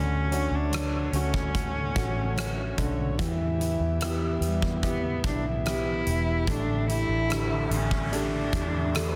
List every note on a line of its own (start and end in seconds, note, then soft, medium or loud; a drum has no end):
0.00 0.47 D2 loud
0.00 0.30 D3 medium
0.00 2.74 D3 medium
0.00 3.16 D3 medium
0.00 0.27 F#3 medium
0.00 0.29 A3 medium
0.00 3.16 A3 medium
0.00 0.30 C#4 medium
0.00 0.57 C#4 medium
0.00 0.31 F#4 medium
0.00 3.16 F#4 medium
0.00 3.16 C#5 medium
0.29 0.50 F#3 medium
0.29 0.51 A3 medium
0.29 0.50 C#4 medium
0.29 0.48 F#4 medium
0.29 1.12 F#4 soft
0.29 1.11 C#5 soft
0.29 closed hi-hat medium
0.33 1.12 D4 soft
0.50 1.09 D2 medium
0.50 0.70 A3 soft
0.50 0.72 C#4 soft
0.50 0.71 F#4 soft
0.55 1.15 D4 medium
0.70 1.12 D3 medium
0.70 1.10 F#3 medium
0.70 1.11 A3 medium
0.70 1.13 F#4 medium
0.70 closed hi-hat medium
0.74 cross-stick loud
1.11 1.91 D2 medium
1.11 1.33 F#3 medium
1.11 1.34 A3 medium
1.11 1.94 A3 soft
1.11 1.33 C#4 medium
1.11 1.94 C#4 soft
1.11 1.31 F#4 medium
1.11 closed hi-hat medium
1.15 2.76 C#4 medium
1.15 1.94 F#4 soft
1.32 1.95 F#4 soft
1.32 kick medium
1.55 kick medium
1.55 closed hi-hat medium
1.94 2.74 A1 medium
1.94 2.15 F#3 medium
1.94 2.16 A3 medium
1.94 2.76 A3 soft
1.94 2.15 C#4 medium
1.94 2.76 C#4 soft
1.94 2.76 F#4 medium
1.94 2.14 F#4 medium
1.94 kick loud
1.94 closed hi-hat medium
2.15 2.36 A3 soft
2.15 2.36 C#4 soft
2.15 2.36 F#4 medium
2.35 2.57 D3 medium
2.35 2.57 F#3 medium
2.35 2.57 A3 medium
2.35 2.56 C#4 medium
2.35 2.54 F#4 medium
2.35 cross-stick loud
2.35 closed hi-hat medium
2.56 2.76 A3 soft
2.56 2.77 C#4 medium
2.56 2.77 F#4 medium
2.76 3.16 B1 medium
2.76 3.18 D3 medium
2.76 3.17 F#3 medium
2.76 3.18 A3 medium
2.76 3.19 C#4 medium
2.76 3.19 F#4 medium
2.76 kick medium
2.76 closed hi-hat medium
3.17 3.77 E2 loud
3.17 3.57 E3 medium
3.17 6.43 E3 medium
3.17 6.44 B3 medium
3.17 3.59 B3 medium
3.17 3.60 E4 medium
3.17 9.16 E4 medium
3.17 9.16 G4 medium
3.17 3.60 G4 medium
3.17 6.44 E5 medium
3.17 kick loud
3.17 closed hi-hat medium
3.58 3.80 E3 medium
3.58 3.80 B3 medium
3.58 3.80 E4 medium
3.58 3.78 G4 medium
3.58 closed hi-hat medium
3.79 4.38 E2 medium
3.79 4.00 B3 soft
3.79 4.01 E4 soft
3.79 4.00 G4 medium
4.00 4.39 E3 medium
4.00 4.41 B3 medium
4.00 4.81 B3 soft
4.00 4.41 E4 medium
4.00 4.82 E4 soft
4.00 4.42 G4 medium
4.00 4.82 G4 soft
4.00 cross-stick loud
4.00 closed hi-hat loud
4.40 5.20 E2 medium
4.40 4.62 E3 medium
4.40 4.62 B3 medium
4.40 4.62 E4 medium
4.40 4.60 G4 medium
4.40 closed hi-hat medium
4.44 4.82 G3 medium
4.62 5.24 B3 soft
4.62 5.25 E4 soft
4.62 5.24 G4 medium
4.62 kick medium
4.83 5.63 B3 soft
4.83 5.22 B3 medium
4.83 5.63 E4 soft
4.83 5.63 G4 medium
4.83 kick medium
4.83 closed hi-hat medium
5.23 6.02 B1 medium
5.23 5.44 E3 medium
5.23 5.45 B3 medium
5.23 5.44 D4 medium
5.23 5.44 E4 medium
5.23 5.42 G4 medium
5.23 kick loud
5.23 closed hi-hat medium
5.43 5.65 B3 soft
5.43 5.66 E4 soft
5.43 5.65 G4 soft
5.65 5.86 E3 medium
5.65 6.45 B3 soft
5.65 5.86 B3 medium
5.65 6.46 E4 soft
5.65 5.86 E4 medium
5.65 6.52 E4 loud
5.65 6.46 G4 medium
5.65 5.84 G4 medium
5.65 cross-stick loud
5.65 closed hi-hat medium
5.85 6.05 B3 soft
5.85 6.06 E4 soft
5.85 6.06 G4 medium
6.05 6.45 E1 medium
6.05 6.46 E3 medium
6.05 6.47 B3 medium
6.05 6.48 E4 medium
6.05 6.47 G4 medium
6.05 closed hi-hat medium
6.46 7.05 A1 loud
6.46 6.88 A2 medium
6.46 6.88 D3 medium
6.46 6.85 E3 medium
6.46 9.16 A3 medium
6.46 6.87 A3 medium
6.46 9.16 A3 medium
6.46 6.88 D4 medium
6.46 6.89 G4 medium
6.46 9.16 E5 medium
6.46 kick loud
6.46 closed hi-hat medium
6.46 noise sweep medium
6.50 6.90 D4 medium
6.87 7.08 E3 medium
6.87 7.08 A3 medium
6.87 7.07 D4 medium
6.87 7.68 E4 loud
6.87 7.06 G4 medium
6.87 closed hi-hat medium
7.07 7.67 A1 medium
7.07 7.28 E3 soft
7.07 7.28 A3 soft
7.07 7.29 D4 soft
7.07 7.29 G4 soft
7.28 7.49 A2 medium
7.28 7.50 D3 medium
7.28 8.09 D3 soft
7.28 7.50 E3 medium
7.28 7.50 A3 medium
7.28 7.49 D4 medium
7.28 7.47 G4 medium
7.28 8.10 G4 soft
7.28 8.10 A4 soft
7.28 cross-stick loud
7.28 closed hi-hat medium
7.48 7.68 E3 soft
7.48 7.70 A3 soft
7.48 7.71 D4 soft
7.48 7.70 G4 soft
7.69 8.49 A1 medium
7.69 7.91 E3 medium
7.69 7.91 A3 medium
7.69 7.90 D4 medium
7.69 7.89 G4 medium
7.69 closed hi-hat medium
7.74 8.15 C#4 medium
7.90 8.50 E3 soft
7.90 8.52 A3 soft
7.90 8.53 D4 medium
7.90 8.53 G4 soft
7.90 kick medium
8.12 8.92 D4 soft
8.12 9.16 D4 medium
8.12 8.92 G4 soft
8.12 8.92 A4 medium
8.12 closed hi-hat medium
8.52 9.16 E2 medium
8.52 8.73 E3 medium
8.52 8.73 A3 medium
8.52 8.72 D4 medium
8.52 8.70 G4 medium
8.52 kick medium
8.52 closed hi-hat medium
8.71 8.93 E3 soft
8.71 8.93 A3 soft
8.71 8.94 D4 soft
8.71 8.93 G4 medium
8.93 9.14 A2 medium
8.93 9.14 D3 medium
8.93 9.15 E3 medium
8.93 9.15 A3 medium
8.93 9.16 D4 soft
8.93 9.14 D4 medium
8.93 9.16 G4 soft
8.93 9.12 G4 medium
8.93 9.16 A4 medium
8.93 cross-stick loud
8.93 closed hi-hat medium